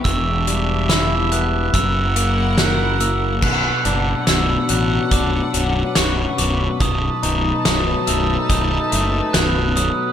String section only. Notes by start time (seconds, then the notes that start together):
Already playing: G4
0.06 D4 E5
1.75 E4 A#4 F#5
3.43 D4 B4 F#5
6.80 D#4 A5